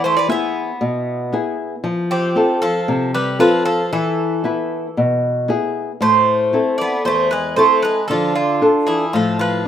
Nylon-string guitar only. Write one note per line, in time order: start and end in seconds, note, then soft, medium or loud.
0.00 0.28 E3 medium
0.28 0.70 B3 soft
0.28 0.71 E4 soft
0.28 0.71 G#4 medium
0.81 1.31 B2 medium
1.33 1.74 B3 soft
1.33 1.75 E4 soft
1.33 1.75 G#4 medium
1.84 2.35 F3 medium
2.35 2.78 C4 soft
2.35 2.78 F4 soft
2.35 2.78 A4 medium
2.88 3.39 C3 medium
3.39 3.81 C4 soft
3.39 3.81 F4 soft
3.39 3.82 A4 medium
3.93 4.43 E3 medium
4.44 4.86 B3 soft
4.44 4.86 E4 soft
4.44 4.87 B4 medium
4.97 5.48 B2 medium
5.48 5.90 B3 soft
5.48 5.91 E4 soft
5.48 5.91 G#4 medium
6.01 6.52 A2 medium
6.53 6.95 C4 soft
6.53 6.95 E4 soft
6.53 6.96 A4 medium
7.05 7.56 E2 medium
7.57 7.99 C4 soft
7.57 7.99 E4 soft
7.57 7.99 A4 soft
8.10 8.61 D3 medium
8.62 9.04 D4 soft
8.62 9.04 F4 soft
8.62 9.04 A4 medium
9.14 9.65 A2 medium